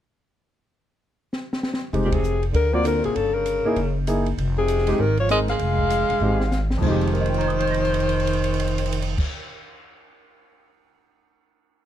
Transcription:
1.33 snare
1.53 snare
1.63 snare
1.74 snare
1.93 F1 G#3 C4 D#4 G4, kick, ride
2.04 A#2 G4
2.11 C3 G#4, kick, ride
2.24 hi-hat pedal
2.43 ride
2.53 D2 D3 A#4, kick, ride
2.72 F3 A#3 C4 F4 F#4 D5
2.84 D3 A#4, hi-hat pedal, ride
3.02 G#1 C3 G#4, ride
3.15 G1 C#3 A4, kick, ride
3.33 C#3 A#4
3.46 hi-hat pedal, ride
3.65 A#3 D#4 E4 G#4, muted upright bass stroke
3.76 F#1, kick, ride
4.07 A#3 D#4 E4 G#4, hi-hat pedal, ride
4.26 ride
4.38 F1, kick, ride
4.58 C3 G#4
4.68 hi-hat pedal, ride
4.78 snare
4.87 G#3 C4 D#4 G4, snare, ride
4.98 G#1 D#3 A#4, kick
5.17 F3 C#5, ride
5.29 G#3 C4 D#4 A#4 D#5, hi-hat pedal, ride
5.48 G#3 F5, snare, ride
5.59 F1, kick, ride
5.79 kick
5.90 hi-hat pedal, ride
6.09 E1, ride
6.20 G#1 G#3 C4 D#4 G4
6.41 snare
6.52 snare, hi-hat pedal
6.71 snare
6.77 F2 F3
6.82 F1 D#3 G#3 C5, kick, crash
6.86 D#4 G4
7.01 crash
7.07 ride
7.13 A#4, crash
7.21 D#5
7.26 G5, ride
7.34 A#5, crash
7.41 ride
7.48 D#6, crash
7.59 G6, ride
7.67 A#6, crash
7.74 ride
7.85 crash
7.94 ride
8.00 crash
8.09 ride
8.20 crash
8.27 ride
8.33 crash
8.44 ride
8.54 crash
8.60 ride
8.67 crash
8.78 ride
8.86 crash
8.92 ride
9.02 crash
9.18 kick, crash

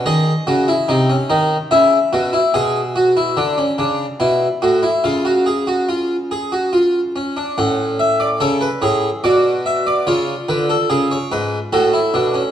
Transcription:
0.06 D#3 G#4 D#5
0.47 C#3 F#4
0.68 E4
0.89 C3 D#4
1.10 C#4
1.30 D#3 D#4
1.71 C#3 E4 E5
2.13 B2 F#4
2.33 E4
2.54 B2 G#4 G#5
2.96 F#4
3.17 E4
3.37 D3 D4
3.58 C#4
3.78 C#3 D4
4.20 B2 E4
4.62 A2 F#4
4.83 E4
5.04 C#3 F4 F5
5.25 F#4
5.46 G#4
5.67 F#4
5.89 F4
6.31 G#4
6.52 F#4
6.73 F4
7.16 C#4
7.37 D4
7.58 A2 C#4 F#5
7.99 E5
8.20 D5
8.40 C#3 A4 C#5
8.61 B4
8.82 A2 G#4 C#5
9.24 B2 F#4 D5
9.65 E5
9.86 D5
10.07 C#3 F4 C#5
10.48 D3 B4
10.69 A4
10.89 C#3 G#4
11.11 C#5
11.31 G#2 B4
11.73 A2 F#4 A4
11.94 E4
12.14 B2 D4
12.34 C#4

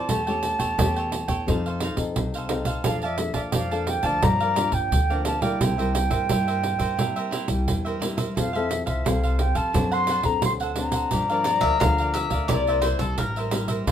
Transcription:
Already playing: A5
0.08 E2 E3 A3 C#4 G4 A4 C#5 G5, pandeiro
0.27 A3 C#4 G4 A4 C#5 G5, pandeiro
0.43 muted cavaquinho stroke, pandeiro
0.59 E2 A4 C#5 G5, pandeiro
0.78 E2 E3 A3 C#4 G4 A4 C#5 G5, pandeiro
0.96 A4 C#5 G5, pandeiro
1.12 pandeiro
1.28 E2 A4 C#5 G5, pandeiro
1.47 F2 F3 C4 D#4 A4 C5 F5, pandeiro
1.66 A4 C5 F5, pandeiro
1.80 D#4 A4 C5 F5, pandeiro
1.96 F2 C4 D#4 A4, muted cavaquinho stroke, pandeiro
2.16 C2 C3, pandeiro
2.34 A4 C5 F5, pandeiro
2.49 C4 D#4 A4 C5 F5, pandeiro
2.65 A4 C5 F5, pandeiro
2.84 F2 F3 A#3 D4 A4 A#4 D5 F5 A5, pandeiro
3.02 D5 E5 F5 A5, pandeiro
3.18 A#3 D4 A4, muted cavaquinho stroke, pandeiro
3.34 F2 D5 E5 F5 A5, pandeiro
3.52 F2 F3 A#4 D5 F5 A5, pandeiro
3.71 A#3 D4 A4 D5 F5 A5, pandeiro
3.87 G5, pandeiro
4.03 D2 F3 A#3 D4 D5 F5 A5, pandeiro
4.22 G2 G4 A#4 D5 F5 A#5, pandeiro
4.40 A#4 D5 F5, pandeiro
4.56 F3 A#3 D4 G4 A#4 D5 F5, pandeiro
4.72 G2 G5, muted cavaquinho stroke, pandeiro
4.91 D2 D3, pandeiro
5.10 F3 A#3 D4 A#4 D5 F5, pandeiro
5.25 G4 A#4 D5 F5 A5, pandeiro
5.42 G3 A#3 E4 A#4 D5 F5 G5, pandeiro
5.61 C2 C3 E4 A#4 C5 E5, pandeiro
5.78 G3 A#3 E4 A#4 C5 E5, pandeiro
5.94 muted cavaquinho stroke, pandeiro
6.10 G2 A#4 C5 E5, pandeiro
6.29 G2 G3 A#3 E4 A#4 C5 E5, pandeiro
6.47 A#4 C5 E5, pandeiro
6.63 pandeiro
6.79 G2 A#4 C5 E5, pandeiro
6.97 C3 G3 A#3 E4 A#4 C5 E5, pandeiro
7.16 A#4 C5 E5, pandeiro
7.31 E4 A#4 C5 E5, pandeiro
7.48 C2 G3 A#3 E4, muted cavaquinho stroke, pandeiro
7.68 E2 G2, pandeiro
7.85 A#4 C5 E5, pandeiro
8.00 G3 A#3 E4 A#4 C5 E5, pandeiro
8.17 A#4 C5 E5, pandeiro
8.35 F2 F3 C4 E4 A4 C5 F5, pandeiro
8.53 C4 E4 A4 C5 E5 F5, pandeiro
8.69 muted cavaquinho stroke, pandeiro
8.86 C2 A4 C5 E5 F5, pandeiro
9.04 C2 C3 C4 E4 A4 C5 F5, pandeiro
9.23 A4 C5 F5, pandeiro
9.39 G5, pandeiro
9.55 F2 A4 C5 F5 A5, pandeiro
9.73 F#2 F#3 C4 D4 A4 C5 F#5, pandeiro
9.91 A4 C5 F#5 C6, pandeiro
10.07 D4 A4 C5 F#5, pandeiro
10.23 F#2 C4 D4 A4 A#5, muted cavaquinho stroke, pandeiro
10.42 D2 F#3 C6, pandeiro
10.60 A4 C5 F#5, pandeiro
10.76 C4 D4 A4 C5 F#5 A#5, pandeiro
10.92 A4 C5 F#5, pandeiro
11.11 G2 F3 A#3 D4 G4 A#4 D5 F5, pandeiro
11.29 F3 A#3 D4 A#4 D5 F5, pandeiro
11.44 D5, muted cavaquinho stroke, pandeiro
11.61 D2 A#4 D5 E5 F5, pandeiro
11.80 D2 D3 F3 A#3 D4 G4 A#4 D5 F5, pandeiro
11.98 A#4 D5 F5, pandeiro
12.14 E5, pandeiro
12.30 D2 A#4 D5 F5, pandeiro
12.48 C2 C3 G3 A#3 E4 A#4 D5, pandeiro
12.52 C5 E5
12.67 A#4 C5 E5, pandeiro
12.82 E4 A#4 C5, pandeiro
12.86 E5
12.99 C2 G3 A#3 E4 A4, muted cavaquinho stroke, pandeiro
13.18 A1 G2 A#4, pandeiro
13.36 A#4 C5 E5, pandeiro
13.51 G3 A#3 E4 A#4 C5 E5, pandeiro
13.68 A#4 C5 E5, pandeiro
13.86 D2 D3 G3 C4 D4 G4 F5, pandeiro

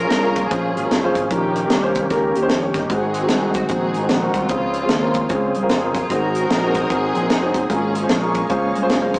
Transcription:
Already playing: A#2 F3 A#3 C#4 F4 G#4 A#4
0.03 C#4 F4 G#4 C#5
0.10 C2, snare, closed hi-hat
0.23 C#4 F4 G#4 C#5
0.36 kick, closed hi-hat
0.50 A#1 C#4 F4 G#4 C5, kick, closed hi-hat
0.76 G#1, closed hi-hat
0.83 C#4 F4 G#4 A#4
0.91 F#1, snare, closed hi-hat
1.03 C#4 F4 G#4 C5
1.15 G#1, kick, closed hi-hat
1.30 A#1 A#2 D#3 C#4 D#4 G4 A#4, kick, closed hi-hat
1.55 closed hi-hat
1.63 C#4 D#4 G4 A#4
1.70 C2, snare, closed hi-hat
1.83 C#4 D#4 G4 C5
1.95 kick, closed hi-hat
2.10 C#2 C#4 D#4 G4 A#4, kick, snare, closed hi-hat
2.35 D#2 G4, closed hi-hat
2.42 C#4 D#4 G4 C5
2.49 F1 D#4, snare, closed hi-hat
2.62 C#4 D#4 G4 C#5
2.74 G1 D#4, kick, snare, closed hi-hat
2.89 G#1 G#2 G#3 C4 D#4 F#4 G#4, kick, closed hi-hat
3.14 closed hi-hat
3.22 C4 D#4 F#4 G#4
3.28 C2, snare, closed hi-hat
3.41 C4 D#4 F#4 G#4
3.54 F#4, kick, closed hi-hat
3.68 A#1 C4 D#4 F#4 G#4, kick, closed hi-hat
3.94 G#1, closed hi-hat
4.02 C4 D#4 F#4 G#4
4.09 A#1, snare, closed hi-hat
4.22 C4 D#4 F#4 A#4
4.34 C2 G#3 C4 F4, kick, closed hi-hat
4.49 C#2 C#3 F3 C4 C#4 F4 G#4, kick, closed hi-hat
4.74 closed hi-hat
4.82 C4 C#4 F4 G#4
4.89 D#2, snare, closed hi-hat
5.02 C4 C#4 F4 A#4
5.14 kick, closed hi-hat
5.29 C#2 C4 C#4 F4 G#4, kick, closed hi-hat
5.54 C2, closed hi-hat
5.62 C4 C#4 F4 A#4
5.69 F1, snare, closed hi-hat
5.83 C4 C#4 F4 A#4
5.95 F#1 F4, kick, closed hi-hat
6.10 G#1 G#2 F#3 C4 D#4 F#4 G#4 A#4 F#5 G#5 C6 D#6, kick, closed hi-hat
6.35 closed hi-hat
6.42 C4 D#4 F#4 A#4
6.50 A#1, snare, closed hi-hat
6.63 C4 D#4 F#4 G#4
6.74 kick, closed hi-hat
6.90 G#1 C4 D#4 F#4 G#4 A#4, kick, closed hi-hat
7.15 A#1, closed hi-hat
7.22 C4 D#4 F#4 A#4
7.30 F1, snare, closed hi-hat
7.42 C4 D#4 F#4 G#4
7.54 F#1, kick, closed hi-hat
7.68 G#1 G#2 G#3 A#3 C#4 F4 G#4 A#4 F5 G#5 A#5 C#6, kick, closed hi-hat
7.73 G#4
7.95 closed hi-hat
8.02 C#4 F4 G#4 C5
8.09 A#1, snare, closed hi-hat
8.22 C#4 F4 G#4 A#4
8.34 kick, closed hi-hat
8.49 C#2 C#4 F4 G#4 C5, kick, closed hi-hat
8.75 C2, closed hi-hat
8.81 C#4 F4 G#4 C5
8.89 F#1, snare, closed hi-hat
9.01 C#4 F4 G#4 C5
9.14 F1 F4, kick, closed hi-hat

